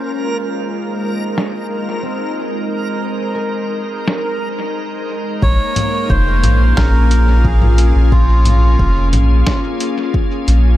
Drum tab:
HH |----------------|----------------|--x---x---x---x-|--x---x---x---x-|
SD |--------o-------|--------o-------|--------o-------|--------o-------|
CG |----------------|----------------|--O---O------O--|--O---O---------|
BD |----------------|----------------|o---o---o---o---|o---o---o---o---|